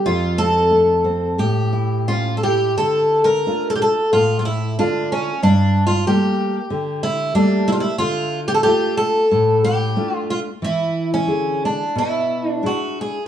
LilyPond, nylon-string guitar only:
\new Staff \with { instrumentName = "Nylon-string guitar" } { \time 4/4 \key a \phrygian \tempo 4 = 91 f,8 c'8 a8 c'8 a,8 e'8 cis'8 e'8 | \key d \minor d4 <a d' f'>4 a,4 <d a f'>4 | g,4 <g a bes>4 d4 <g a bes>4 | d4 <a d' f'>4 a,4 <a d' f'>4 |
e4 <d e' gis'>4 b,4 <d' e' gis'>4 | }